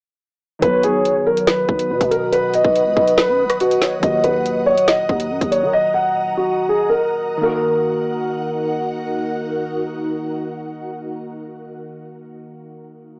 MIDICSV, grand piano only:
0, 0, Header, 1, 2, 480
1, 0, Start_track
1, 0, Key_signature, -6, "minor"
1, 0, Tempo, 425532
1, 704, Time_signature, 4, 2, 24, 8
1, 14884, End_track
2, 0, Start_track
2, 0, Title_t, "Grand piano"
2, 0, Program_c, 0, 0
2, 706, Note_on_c, 0, 71, 94
2, 922, Note_off_c, 0, 71, 0
2, 947, Note_on_c, 0, 68, 85
2, 1396, Note_off_c, 0, 68, 0
2, 1427, Note_on_c, 0, 70, 80
2, 1643, Note_off_c, 0, 70, 0
2, 1663, Note_on_c, 0, 71, 78
2, 2340, Note_off_c, 0, 71, 0
2, 2381, Note_on_c, 0, 70, 88
2, 2599, Note_off_c, 0, 70, 0
2, 2622, Note_on_c, 0, 71, 92
2, 2840, Note_off_c, 0, 71, 0
2, 2866, Note_on_c, 0, 75, 84
2, 3316, Note_off_c, 0, 75, 0
2, 3341, Note_on_c, 0, 75, 79
2, 3560, Note_off_c, 0, 75, 0
2, 3581, Note_on_c, 0, 71, 90
2, 4033, Note_off_c, 0, 71, 0
2, 4068, Note_on_c, 0, 66, 79
2, 4283, Note_off_c, 0, 66, 0
2, 4542, Note_on_c, 0, 75, 88
2, 4760, Note_off_c, 0, 75, 0
2, 4783, Note_on_c, 0, 71, 81
2, 5235, Note_off_c, 0, 71, 0
2, 5259, Note_on_c, 0, 73, 87
2, 5479, Note_off_c, 0, 73, 0
2, 5505, Note_on_c, 0, 75, 95
2, 6181, Note_off_c, 0, 75, 0
2, 6220, Note_on_c, 0, 73, 75
2, 6439, Note_off_c, 0, 73, 0
2, 6467, Note_on_c, 0, 75, 99
2, 6683, Note_off_c, 0, 75, 0
2, 6699, Note_on_c, 0, 78, 78
2, 7153, Note_off_c, 0, 78, 0
2, 7190, Note_on_c, 0, 66, 72
2, 7525, Note_off_c, 0, 66, 0
2, 7546, Note_on_c, 0, 68, 75
2, 7762, Note_off_c, 0, 68, 0
2, 7779, Note_on_c, 0, 70, 79
2, 8345, Note_off_c, 0, 70, 0
2, 8384, Note_on_c, 0, 70, 86
2, 9778, Note_off_c, 0, 70, 0
2, 14884, End_track
0, 0, End_of_file